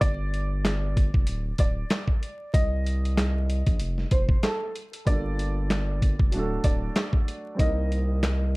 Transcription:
0.01 sub bass G1, upright piano D5, kick, closed hi-hat
0.34 closed hi-hat
0.65 snare, clap, closed hi-hat
0.97 kick, closed hi-hat
1.14 sub bass F1, kick
1.27 sub bass D1, closed hi-hat
1.58 sub bass D1, upright piano D5, kick, closed hi-hat
1.90 snare, clap, closed hi-hat
2.08 kick
2.23 closed hi-hat
2.54 sub bass C2, upright piano D#5, kick, closed hi-hat
2.86 closed hi-hat
3.05 closed hi-hat
3.17 snare, clap, closed hi-hat
3.50 closed hi-hat
3.66 sub bass A#1, kick, closed hi-hat
3.80 sub bass F1, closed hi-hat
3.98 snare
4.11 sub bass F1, upright piano C5, kick, closed hi-hat
4.29 kick
4.43 upright piano A4, snare, clap, closed hi-hat
4.75 closed hi-hat
4.93 closed hi-hat
5.05 sub bass G1, grand piano G3 A#3 D4, upright piano D5, kick, closed hi-hat
5.11 grand piano F4 A4
5.39 closed hi-hat
5.70 snare, clap, closed hi-hat
6.02 kick, closed hi-hat
6.19 sub bass F1, kick
6.31 sub bass D1, grand piano F#3 A3 D4, closed hi-hat
6.37 grand piano F#4 A4
6.64 sub bass D1, upright piano D5, kick, closed hi-hat
6.96 snare, clap, closed hi-hat
7.13 kick
7.28 closed hi-hat
7.55 grand piano G3 A#3 C4
7.59 sub bass C2, grand piano D#4 A#4, upright piano D#5, kick, closed hi-hat
7.92 closed hi-hat
8.23 snare, clap, closed hi-hat

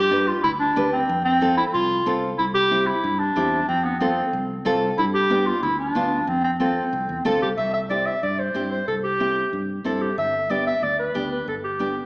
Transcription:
Already playing: fingered electric bass G2, clarinet G4
0.11 nylon-string guitar D4 G4 B4
0.27 clarinet F4
0.43 fingered electric bass D2, clarinet E4
0.59 clarinet D4
0.76 fingered electric bass D2, nylon-string guitar D4 G4 B4
0.92 clarinet C4
1.09 fingered electric bass F2
1.24 clarinet C4
1.41 nylon-string guitar C4 F4 A4
1.57 clarinet E4
1.73 fingered electric bass C2, clarinet F4
2.06 fingered electric bass C2, nylon-string guitar C4 F4 A4
2.38 fingered electric bass C2, clarinet E4
2.54 clarinet G4
2.71 nylon-string guitar C4 E4 G4
2.87 clarinet E4
3.04 fingered electric bass G2
3.19 clarinet D4
3.36 fingered electric bass E2, nylon-string guitar C4 E4 G4
3.68 fingered electric bass F2, clarinet C4
3.84 clarinet B3
4.00 clarinet C4, nylon-string guitar C4 F4 A4
4.33 fingered electric bass C2
4.65 fingered electric bass C2, nylon-string guitar C4 F4 A4
4.98 fingered electric bass G2, clarinet E4
5.14 clarinet G4
5.30 nylon-string guitar B3 D4 G4
5.46 clarinet F4
5.62 fingered electric bass D2, clarinet E4
5.79 clarinet D4
5.95 fingered electric bass D2, nylon-string guitar B3 D4 F4
6.27 fingered electric bass F2, clarinet C4
6.44 clarinet C4
6.60 nylon-string guitar C4 F4 A4, clarinet C4
6.93 fingered electric bass C2
7.09 fingered electric bass E2
7.25 fingered electric bass D2, nylon-string guitar C4 F4 A4, clarinet A4
7.42 fingered electric bass C2, clarinet G4
7.57 fingered electric bass C2, clarinet E5
7.74 clarinet E5
7.90 nylon-string guitar C4 E4 G4, clarinet D5
8.06 clarinet E5
8.23 fingered electric bass G2, clarinet D5
8.39 clarinet C5
8.54 fingered electric bass G2, nylon-string guitar C4 E4 G4
8.71 clarinet C5
8.88 fingered electric bass C2, clarinet A4
9.04 clarinet G4
9.20 nylon-string guitar C4 E4 G4
9.53 fingered electric bass G2
9.84 fingered electric bass G2, nylon-string guitar C4 E4 A4, clarinet A4
10.01 clarinet G4
10.18 fingered electric bass G1, clarinet E5
10.50 nylon-string guitar B3 D4 G4, clarinet D5
10.67 clarinet E5
10.82 fingered electric bass D2, clarinet D5
10.99 clarinet B4
11.14 fingered electric bass D2, nylon-string guitar B3 D4 G4
11.32 clarinet B4
11.48 fingered electric bass G1, clarinet A4
11.64 clarinet G4
11.79 nylon-string guitar B3 D4 G4

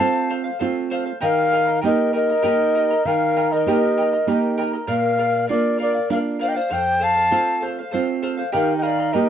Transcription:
Already playing: charango A4, pan flute F5, quena A5
0.00 nylon-string guitar A3 C4 F4, charango C5 F5
0.29 charango A4 C5 F5
0.44 charango C5 F5
0.59 nylon-string guitar A3 C4 F4, charango A4 C5 F5
0.90 charango A4 C5 F5
1.05 charango C5 F5
1.21 nylon-string guitar D#3, charango G4 A#4 D#5 G5 A#5, pan flute A#4, quena F5
1.52 charango A#4 D#5 G5 A#5
1.67 charango A#4 D#5 A#5
1.81 nylon-string guitar A#3 D#4 G4, charango A#4 D#5 G5 A#5, pan flute A#4
1.86 quena D#5
2.13 charango A#4 D#5 G5 A#5, pan flute A#4, quena D#5
2.30 charango A#4 D#5 A#5
2.42 nylon-string guitar A#3 D#4 G4, charango G4 A#4 D#5 G5 A#5
2.75 charango A#4 D#5 G5 A#5
2.90 charango A#4 D#5 A#5
3.05 nylon-string guitar D#3, pan flute A#4, charango A#4 D#5 G5 A#5, quena F5
3.36 charango A#4 D#5 G5 A#5
3.52 pan flute A#4, charango A#4 D#5 A#5, quena D#5
3.66 nylon-string guitar A#3 D#4 G4, charango G4 A#4 D#5 G5 A#5
3.98 charango A#4 D#5 G5 A#5
4.13 charango A#4 D#5 A#5
4.27 nylon-string guitar A#3 D#4 G4, charango A#4 D#5 G5 A#5
4.57 charango A#4 D#5 G5 A#5
4.73 charango A#4 D#5 A#5
4.87 nylon-string guitar A#2, charango A#4 D5 F5, pan flute A#4, quena F5
5.18 charango A#4 D5 F5
5.35 charango D5 F5
5.47 nylon-string guitar A#3 D4 F4, charango A#4 D5 F5, quena D5
5.52 pan flute A#4
5.78 charango A#4 D5 F5, pan flute A#4
5.82 quena D5
5.94 charango D5 F5
6.10 nylon-string guitar A#3 D4 F4, charango A#4 D5 F5, pan flute A#4, quena F5
6.39 charango A#4 D5 F5, pan flute C5, quena F5
6.48 pan flute D#5, quena G5
6.54 pan flute C5, charango D5 F5, quena F5
6.69 nylon-string guitar F2, charango A4 C5 F5, pan flute C5, quena G5
7.00 charango A4 C5 F5, pan flute F5, quena A5
7.16 charango C5 F5
7.31 nylon-string guitar A3 C4 F4, charango A4 C5 F5
7.61 charango A4 C5 F5
7.79 charango C5 F5
7.91 nylon-string guitar A3 C4 F4, charango A4 C5 F5
8.22 charango A4 C5 F5
8.37 charango C5 F5
8.52 nylon-string guitar D#3, charango G4 A#4 D#5 G5 A#5, pan flute A#4, quena F5
8.77 pan flute D#5, quena G5
8.82 charango A#4 D#5 G5 A#5, pan flute D5, quena F5
8.99 charango A#4 D#5 A#5
9.12 nylon-string guitar A#3 D#4 G4, pan flute A#4, charango A#4 D#5 G5 A#5, quena D#5

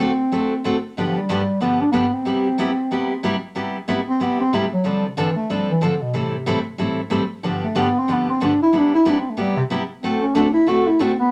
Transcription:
Already playing: bass clarinet C4
0.00 steel-string acoustic guitar D3 A3 C4 F#4 A4
0.32 steel-string acoustic guitar D3 A3 C4 F#4 A4
0.64 steel-string acoustic guitar D3 A3 C4 F#4 A4
0.97 steel-string acoustic guitar G2 D3 F3 B3 D4 G4
1.09 bass clarinet F3
1.18 bass clarinet G3
1.29 steel-string acoustic guitar G2 D3 F3 B3 D4 G4
1.60 steel-string acoustic guitar G2 D3 F3 B3 D4 G4, bass clarinet B3
1.81 bass clarinet D4
1.92 steel-string acoustic guitar G2 D3 F3 B3 D4 G4, bass clarinet B3
2.14 bass clarinet C4
2.25 steel-string acoustic guitar C3 G3 B3 E4 G4
2.58 steel-string acoustic guitar C3 G3 B3 E4 G4
2.91 steel-string acoustic guitar C3 G3 B3 E4 G4
3.23 steel-string acoustic guitar C3 G3 B3 E4 G4
3.55 steel-string acoustic guitar C3 G3 B3 E4 G4
3.88 steel-string acoustic guitar C3 G3 B3 E4 G4
4.09 bass clarinet C4
4.20 steel-string acoustic guitar C3 G3 B3 E4 G4, bass clarinet B3
4.41 bass clarinet C4
4.53 steel-string acoustic guitar C3 G3 B3 E4 G4, bass clarinet A3
4.73 bass clarinet F#3
4.84 steel-string acoustic guitar D3 F3 C4 D4 A4, bass clarinet G3
5.07 bass clarinet C3
5.17 steel-string acoustic guitar D3 F3 C4 D4 A4, bass clarinet E3
5.36 bass clarinet A3
5.50 steel-string acoustic guitar D3 F3 C4 D4 A4, bass clarinet G3
5.70 bass clarinet E3
5.81 steel-string acoustic guitar D3 F3 C4 D4 A4, bass clarinet D3
6.01 bass clarinet B2
6.13 steel-string acoustic guitar A2 E3 G3 C4 E4 A4, bass clarinet C3
6.46 steel-string acoustic guitar A2 E3 G3 C4 E4 A4
6.78 steel-string acoustic guitar A2 E3 G3 C4 E4 A4
7.10 steel-string acoustic guitar A2 E3 G3 C4 E4 A4
7.43 steel-string acoustic guitar G2 D3 F3 B3 D4 G4
7.64 bass clarinet A3
7.75 steel-string acoustic guitar G2 D3 F3 B3 D4 G4
7.79 bass clarinet B3
7.99 bass clarinet C4
8.08 steel-string acoustic guitar G2 D3 F3 B3 D4 G4
8.13 bass clarinet B3
8.30 bass clarinet C4
8.40 steel-string acoustic guitar G2 D3 F3 B3 D4 G4
8.45 bass clarinet D4
8.63 bass clarinet E4
8.73 steel-string acoustic guitar C3 G3 B3 E4 G4
8.78 bass clarinet D4
8.95 bass clarinet E4
9.05 steel-string acoustic guitar C3 G3 B3 E4 G4
9.10 bass clarinet D4
9.20 bass clarinet C4
9.30 bass clarinet A3
9.37 steel-string acoustic guitar C3 G3 B3 E4 G4, bass clarinet G3
9.57 bass clarinet C3
9.70 steel-string acoustic guitar C3 G3 B3 E4 G4
10.03 steel-string acoustic guitar D3 A3 C4 F#4 A4, bass clarinet C4
10.22 bass clarinet C#4
10.35 steel-string acoustic guitar D3 A3 C4 F#4 A4, bass clarinet D4
10.54 bass clarinet E4
10.67 steel-string acoustic guitar D3 A3 C4 F#4 A4, bass clarinet F#4
10.87 bass clarinet E4
10.99 steel-string acoustic guitar D3 A3 C4 F#4 A4, bass clarinet C4
11.19 bass clarinet B3

